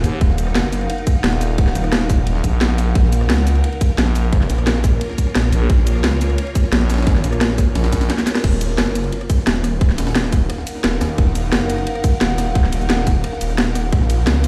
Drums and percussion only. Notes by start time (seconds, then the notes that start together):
0.04 open hi-hat, ride, cabasa
0.21 kick, closed hi-hat, ride
0.30 snare
0.38 closed hi-hat, ride, cabasa
0.47 cross-stick, snare
0.55 snare, closed hi-hat, open hi-hat
0.64 cross-stick
0.73 open hi-hat, ride, cabasa
0.81 ride
0.90 closed hi-hat, ride
0.98 ride
1.07 kick, closed hi-hat, ride, cabasa
1.15 snare
1.24 snare, closed hi-hat, ride
1.33 ride
1.41 open hi-hat, ride, cabasa
1.50 snare
1.58 kick, closed hi-hat, ride
1.67 snare
1.75 snare, closed hi-hat, ride, cabasa
1.84 cross-stick, ride
1.92 snare, closed hi-hat, ride
2.01 cross-stick, snare
2.10 kick, open hi-hat, cabasa
2.27 closed hi-hat, ride
2.35 snare
2.44 kick, closed hi-hat, cabasa
2.61 snare, closed hi-hat, ride
2.70 cross-stick
2.78 open hi-hat, ride, cabasa
2.95 kick, closed hi-hat, ride
3.04 snare
3.13 closed hi-hat, ride, cabasa
3.21 cross-stick, snare
3.30 snare, closed hi-hat, open hi-hat
3.38 cross-stick
3.47 open hi-hat, ride, cabasa
3.55 ride
3.64 closed hi-hat, ride
3.73 ride
3.81 kick, closed hi-hat, ride, cabasa
3.90 snare
3.98 snare, closed hi-hat, ride
4.07 ride
4.15 open hi-hat, ride, cabasa
4.33 kick, closed hi-hat, ride
4.41 snare
4.50 snare, closed hi-hat, ride, cabasa
4.58 cross-stick, ride
4.67 snare, closed hi-hat, ride
4.75 cross-stick, snare
4.84 kick, open hi-hat, ride, cabasa
5.01 closed hi-hat, ride
5.10 snare
5.18 kick, closed hi-hat, ride, cabasa
5.27 snare
5.35 snare, closed hi-hat, ride
5.44 cross-stick
5.53 open hi-hat, ride, cabasa
5.70 kick, closed hi-hat, ride
5.78 snare
5.87 closed hi-hat, ride, cabasa
5.95 cross-stick, snare
6.04 snare, closed hi-hat, open hi-hat
6.12 cross-stick
6.21 open hi-hat, ride, cabasa
6.30 ride
6.38 closed hi-hat, ride
6.47 ride
6.55 kick, closed hi-hat, ride, cabasa
6.64 snare
6.72 snare, closed hi-hat, ride
6.81 ride
6.90 snare, open hi-hat, cabasa
6.94 snare, open hi-hat
6.98 snare, open hi-hat
7.03 snare, open hi-hat
7.07 kick, snare, closed hi-hat, open hi-hat
7.15 snare
7.24 snare, closed hi-hat, ride, cabasa
7.33 cross-stick, ride, cabasa
7.41 snare, closed hi-hat, ride
7.50 cross-stick, snare
7.58 kick, open hi-hat, ride, cabasa
7.75 snare, closed hi-hat, open hi-hat
7.84 snare, open hi-hat
7.93 kick, snare, closed hi-hat, open hi-hat, cabasa
8.01 snare, open hi-hat, cabasa
8.10 snare, closed hi-hat, ride
8.18 snare, ride, cabasa
8.27 snare, open hi-hat, ride, cabasa
8.35 snare, ride
8.44 kick, closed hi-hat, crash, ride
8.53 snare
8.61 closed hi-hat, ride, cabasa
8.70 snare
8.78 snare, closed hi-hat, open hi-hat
8.87 cross-stick
8.95 closed hi-hat, ride, cabasa
9.04 ride
9.13 closed hi-hat, ride
9.21 cross-stick, ride
9.30 kick, closed hi-hat, ride, cabasa
9.38 snare
9.47 snare, closed hi-hat, ride
9.55 ride
9.64 cross-stick, open hi-hat, ride, cabasa
9.81 kick, closed hi-hat, ride
9.90 snare
9.98 snare, closed hi-hat, open hi-hat, ride, cabasa
10.07 snare, open hi-hat
10.15 snare, closed hi-hat, ride
10.24 cross-stick, snare
10.32 kick, closed hi-hat, ride, cabasa
10.50 cross-stick, closed hi-hat, ride
10.58 snare
10.67 closed hi-hat, ride, cabasa
10.75 snare
10.84 snare, closed hi-hat, ride
11.01 cross-stick, snare, open hi-hat, ride, cabasa
11.18 kick, closed hi-hat, ride
11.27 snare
11.35 closed hi-hat, ride, cabasa
11.44 snare
11.52 snare, closed hi-hat, open hi-hat
11.61 cross-stick
11.70 closed hi-hat, ride, cabasa
11.78 ride
11.87 closed hi-hat, ride
11.95 cross-stick, ride
12.04 kick, closed hi-hat, ride, cabasa
12.13 snare
12.21 snare, closed hi-hat, ride
12.30 ride
12.38 cross-stick, open hi-hat, ride, cabasa
12.55 kick, closed hi-hat, ride
12.64 snare
12.73 snare, closed hi-hat, ride, cabasa
12.81 ride, cabasa
12.90 snare, closed hi-hat, ride
12.98 cross-stick, snare
13.07 kick, closed hi-hat, ride, cabasa
13.24 cross-stick, closed hi-hat, ride
13.32 snare
13.41 closed hi-hat, ride, cabasa
13.50 snare, cabasa
13.58 snare, closed hi-hat
13.75 cross-stick, open hi-hat, ride, cabasa
13.92 kick, closed hi-hat, ride
14.01 snare
14.10 closed hi-hat, ride, cabasa
14.18 snare
14.27 snare, closed hi-hat, open hi-hat
14.35 cross-stick
14.44 closed hi-hat, ride, cabasa